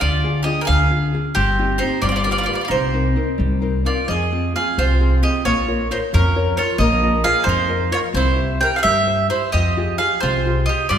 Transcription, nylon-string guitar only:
0.00 D3
0.23 D4 F4 G#4
0.46 D4 F4 G#4
0.68 D3
0.90 D4 F4 G#4
1.14 D4 F4 G#4
1.36 G3
1.58 C4 D#4 G4
1.81 C4 D#4 G4
2.05 G3
2.26 F4 G4 B4
2.48 F4 G4 B4
2.71 C3
2.93 C4 D#4 A#4
3.16 C4 D#4 A#4
3.38 G3
3.61 C4 D#4 A#4 C5
3.84 C4 D#4 A#4 F5
4.09 F3
4.32 C4 F4 G#4
4.55 C4 F4 G#4
4.78 C3
5.00 C4 F4 G#4
5.22 C4 F4 G#4
5.45 A#3
5.68 F4 A#4 C#5
5.90 F4 A#4 C#5
6.13 F3
6.36 F4 A#4 C#5
6.57 F4 A#4 C#5
6.80 A#3
7.02 F4 A#4 D#5
7.24 F4 A#4 D#5
7.46 F3
7.68 F4 A#4 D#5
7.91 F4 A#4 D#5
8.13 C4
8.36 G4 C5 E5
8.61 G4 C5 E5
8.84 G3
9.07 G4 C5 E5
9.30 G4 C5 E5
9.54 F3
9.77 F4 G4 G#4
9.99 F4 G4 G#4
10.23 C3
10.46 F4 G4 G#4
10.68 F4 G4 G#4
10.90 G3

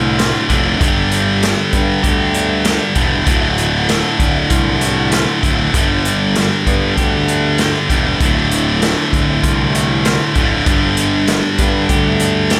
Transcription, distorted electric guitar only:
Already playing: D2 A2 D3
0.48 D2 A2 D3
0.78 G2 D3 G3
2.95 G2 D3 G3
3.25 D2 A2 D3
5.43 D2 A2 D3
5.73 G2 D3 G3
7.89 G2 D3 G3
8.20 D2 A2 D3
10.35 D2 A2 D3
10.65 G2 D3 G3

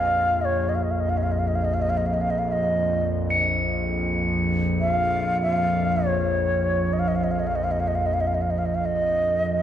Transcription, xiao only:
Already playing: F5
0.41 C#5 D#5
0.69 D#5
0.75 F5
0.83 D#5
0.91 F5
1.00 D#5
1.09 F5
1.17 D#5
1.23 F5
1.31 D#5
1.39 F5
1.48 D#5
1.55 F5
1.65 D#5
1.74 F5
1.82 D#5
1.89 F5
1.97 D#5
2.06 F5
2.13 D#5
2.21 F5
2.30 D#5
2.38 F5
2.48 D#5 F5
4.81 F5
5.42 F5
6.07 C#5
6.93 D#5
6.99 F5
7.08 D#5
7.16 F5
7.24 D#5
7.31 F5
7.40 D#5
7.47 F5
7.56 D#5
7.64 F5
7.72 D#5
7.80 F5
7.88 D#5
7.95 F5
8.06 D#5
8.14 F5
8.21 D#5
8.27 F5
8.35 D#5
8.42 F5
8.51 D#5
8.59 F5
8.66 D#5
8.75 F5
8.85 D#5

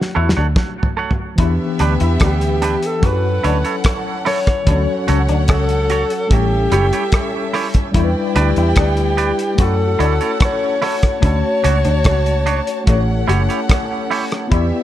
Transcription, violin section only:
1.39 B3 G4 E5
3.03 C#4 A4 F#5
4.67 C#4 C#5 F#5
6.31 C#4 A4 E5
7.95 E4 D5 G5
9.58 C#4 A4 F#5
11.22 F#4 C#5 A5
12.87 C#4 A4 F#5
14.52 B3 G4 E5

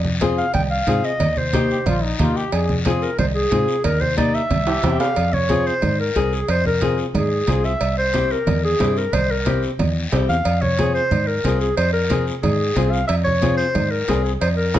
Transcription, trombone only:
1.70 G4
1.86 F4
2.03 D#4
2.20 F4
2.36 G4
2.53 G#4
4.67 G4
4.84 E4
4.92 G4

